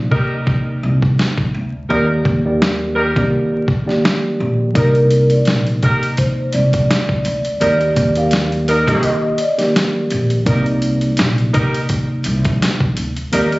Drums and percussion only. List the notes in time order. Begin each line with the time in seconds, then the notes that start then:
0.12 kick
0.47 kick
1.02 kick
1.19 snare
1.38 kick
2.25 kick
2.62 snare
3.16 kick
3.68 kick
3.89 snare
4.05 snare
4.75 kick, closed hi-hat
4.95 closed hi-hat
5.11 closed hi-hat
5.30 closed hi-hat
5.45 snare, closed hi-hat
5.67 closed hi-hat
5.83 kick, closed hi-hat
6.03 closed hi-hat
6.17 kick, closed hi-hat
6.53 closed hi-hat
6.73 kick, closed hi-hat
6.91 snare, closed hi-hat
7.09 kick
7.25 closed hi-hat
7.45 closed hi-hat
7.61 closed hi-hat
7.81 closed hi-hat
7.96 kick, closed hi-hat
8.15 closed hi-hat
8.31 snare, closed hi-hat
8.52 closed hi-hat
8.68 closed hi-hat
8.88 kick, closed hi-hat
9.03 closed hi-hat
9.38 closed hi-hat
9.59 snare, closed hi-hat
9.76 snare, closed hi-hat
10.10 closed hi-hat
10.30 closed hi-hat
10.46 kick, closed hi-hat
10.66 closed hi-hat
10.82 closed hi-hat
11.01 closed hi-hat
11.17 snare, closed hi-hat
11.38 closed hi-hat
11.54 kick, closed hi-hat
11.74 closed hi-hat
11.89 kick, closed hi-hat
12.24 closed hi-hat
12.45 kick, closed hi-hat
12.62 snare, closed hi-hat
12.80 kick
12.97 closed hi-hat
13.16 closed hi-hat
13.33 closed hi-hat
13.52 closed hi-hat